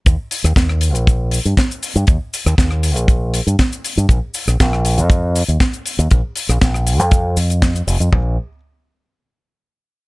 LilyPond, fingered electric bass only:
\new Staff \with { instrumentName = "Fingered electric bass" } { \clef bass \time 4/4 \key ees \mixolydian \tempo 4 = 119 ees,16 r8 ees,16 ees,8. bes,,8. r16 g,16 r8. g,16 | ees,16 r8 ees,16 ees,8. bes,,8. r16 g,16 r8. g,16 | bes,,16 r8 bes,,16 bes,,8. f,8. r16 ees,16 r8. ees,16 | bes,,16 r8 bes,,16 r8. f,8. f,8. r16 f,,16 f,16 |
bes,,8 r2. r8 | }